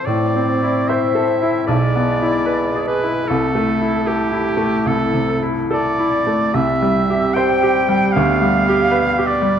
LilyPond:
<<
  \new Staff \with { instrumentName = "Flute" } { \time 4/4 \key a \minor \tempo 4 = 75 d''4 e''4 d''4. b'8 | a'4 g'4 a'8 r8 d''4 | e''4 g''4 f''4. d''8 | }
  \new Staff \with { instrumentName = "Oboe" } { \time 4/4 \key a \minor d''4 e''4 d''4. b'8 | a'4 g'4 a'8 r8 d''4 | e''4 g''4 f''4. d''8 | }
  \new Staff \with { instrumentName = "Grand piano" } { \time 4/4 \key a \minor \tuplet 3/2 { a,8 c'8 e'8 c''8 a'8 e'8 b,,8 b8 e'8 b'8 gis'8 e'8 } | \tuplet 3/2 { c,8 a8 e'8 a'8 e'8 a8 c,8 c8 e'8 a'8 e'8 a8 } | \tuplet 3/2 { c,8 g8 g'8 c''8 g'8 g8 d,8 g8 g'8 b'8 g'8 g8 } | }
  \new Staff \with { instrumentName = "Clarinet" } { \time 4/4 \key a \minor e'1 | e'2.~ e'8 r8 | c'2 b2 | }
  \new Staff \with { instrumentName = "Bassoon" } { \clef bass \time 4/4 \key a \minor c'2 gis2 | a2.~ a8 r8 | g1 | }
>>